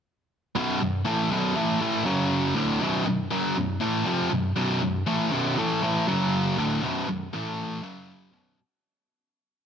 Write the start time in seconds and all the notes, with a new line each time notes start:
0.56 B1 F#2 B2
0.81 B1 F#2
1.05 A2 E3 A3
1.30 B1 F#2 B2
1.55 A2 E3 A3
1.80 A2 E3 A3
2.05 F#2 C#3 F#3
2.55 D2 A2 D3
2.80 B1 F#2 B2
3.06 B1 F#2
3.30 F#2 C#3 F#3
3.56 B1 F#2
3.80 A2 E3 A3
4.05 F2 C3 F3
4.31 B1 F#2
4.56 B1 F#2 B2
4.81 B1 F#2
5.06 A2 E3 A3
5.31 B1 F#2 B2
5.57 A2 E3 A3
5.82 A2 E3 A3
6.07 F#2 C#3 F#3
6.57 D2 A2 D3
6.82 B1 F#2 B2
7.08 B1 F#2
7.33 A2 E3 A3
7.82 F#2 C#3 F#3
8.32 B1 F#2 B2